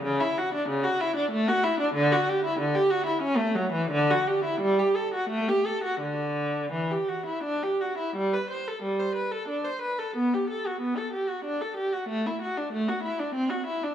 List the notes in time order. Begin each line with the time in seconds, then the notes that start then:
0.02 C#3
0.20 E4
0.38 F#4
0.54 D4
0.69 C#3
0.84 F#4
1.01 E4
1.16 D4
1.31 A3
1.48 F#4
1.64 E4
1.80 D4
1.94 D3
2.12 F#4
2.29 G4
2.45 E4
2.59 D3
2.75 G4
2.90 F#4
3.06 E4
3.22 C#4
3.37 A3
3.55 F#3
3.73 E3
3.91 D3
4.10 F#4
4.28 G4
4.45 E4
4.61 G3
4.79 G4
4.96 A4
5.14 F#4
5.30 A3
5.49 G4
5.66 A4
5.84 F#4
6.01 D3
6.72 E3
6.91 G4
7.08 F#4
7.26 E4
7.44 D4
7.63 G4
7.81 F#4
7.98 E4
8.17 G3
8.34 B4
8.50 C5
8.68 A4
8.83 G3
8.99 C5
9.15 B4
9.32 A4
9.48 D4
9.65 C5
9.82 B4
9.99 A4
10.16 B3
10.34 G4
10.50 A4
10.67 F#4
10.81 B3
10.97 A4
11.13 G4
11.29 F#4
11.45 D4
11.61 A4
11.77 G4
11.93 F#4
12.09 A3
12.27 E4
12.42 F#4
12.57 D4
12.73 A3
12.88 F#4
13.03 E4
13.19 D4
13.35 C4
13.50 F#4
13.67 E4
13.84 D4